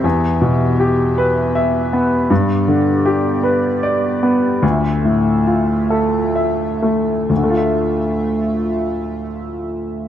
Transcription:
<<
  \new Staff \with { instrumentName = "Analog synth pad" } { \time 3/4 \key d \dorian \tempo 4 = 74 << { <g' e''>2. | <g' d''>2. | <f' e''>2. | <f' e''>2. | } \\ { b2.~ | b2. | a2. | a2. | } >> }
  \new Staff \with { instrumentName = "Grand piano" } { \time 3/4 \key d \dorian e,8 b,8 g'8 b'8 e''8 b8 | g,8 d8 g'8 b'8 d''8 b8 | d,8 a,8 f'8 a'8 e''8 a8 | <d, d a f' e''>2. | }
>>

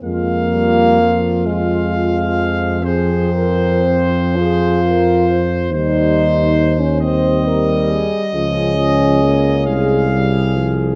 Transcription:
<<
  \new Staff \with { instrumentName = "Trumpet section" } { \time 12/8 \key f \minor \tempo 4. = 45 f''4. f''4. c''2. | c''4. ees''2. f''4. | }
  \new Staff \with { instrumentName = "French horn section" } { \time 12/8 \key f \minor f'2. aes'8 bes'8 c''8 aes'8 bes'8 c''8~ | c''4. c''8 bes'8 aes'8 aes'2. | }
  \new Staff \with { instrumentName = "Euphonium" } { \time 12/8 \key f \minor bes4. aes4. c'4. f'4. | ees'4~ ees'16 des'16 c'4~ c'16 r16 des'2~ des'8 r8 | }
  \new Staff \with { instrumentName = "Trombone" } { \clef bass \time 12/8 \key f \minor aes8 g8 f8 f1~ f8 | g4 r8 g4. f8 f8 bes8 aes8 g8 f8 | }
  \new Staff \with { instrumentName = "Tuba" } { \clef bass \time 12/8 \key f \minor f,1. | ees,2~ ees,8 r8 des,4. c,4. | }
>>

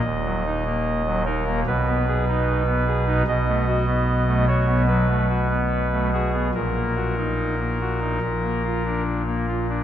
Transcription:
<<
  \new Staff \with { instrumentName = "Pipe organ" } { \time 4/4 \key ees \minor \tempo 4 = 74 ees''4. bes'8 ces''2 | dis''4. des''8 b'4. aes'8 | bes'2. r4 | }
  \new Staff \with { instrumentName = "Pipe organ" } { \time 4/4 \key ees \minor << { ees,16 ges16 ees'16 bes8 ges16 ees'16 bes16 ces16 ces'16 aes'16 ees'8 ces'16 aes'16 ees'16 | b,16 a16 fis'16 b8 a16 fis'16 b16 fis16 a16 fis'16 b8 a16 fis'16 b16 | bes,16 bes16 ges'16 ees'8 bes16 ges'16 ees'16 bes,16 bes16 f'16 d'8 bes16 f'16 d'16 | } \\ { ees,,2 ces,2 | b,,1 | bes,,2 bes,,2 | } >> }
>>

